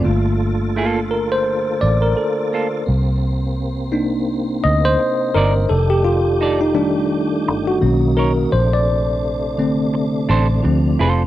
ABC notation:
X:1
M:4/4
L:1/16
Q:"Swing 16ths" 1/4=85
K:Gm
V:1 name="Clean electric guitar"
z4 [B,FA]2 z8 [B,FA]2 | z12 z2 [EBd]2 | z4 [EAd]2 z8 [^D^A^c]2 | z8 z2 [DAc]2 z2 [FAc]2 |]
V:2 name="Tine electric piano"
z6 B c3 d B A4 | z8 z2 e c3 B2 | A G F3 E D4- D ^F3 ^A2 | c d4 z8 z3 |]
V:3 name="Tine electric piano"
[A,B,F]2 z12 z2 | z6 [B,DE]6 z4 | z6 [E,G,A,]6 [^D,^A,^C]4 | z6 [D,A,C]6 [F,A,C]4 |]
V:4 name="Tonewheel organ"
F16 | C16 | [E,G]12 ^D4 | D16 |]
V:5 name="Tonewheel organ" clef=bass
[D,A]16 | [C,B,]16 | [A,D]12 [^C,^A,]4 | [C,A,]12 [C,F,]4 |]
V:6 name="Fingered electric bass" clef=bass
G,,,8- G,,,2 A,,,2 z4 | C,,8- C,,2 D,,2 z2 G,,,2 | F,,,8- F,,,2 G,,,2 =B,,,4 | B,,,8- B,,,2 A,,,2 D,,2 F,,,2 |]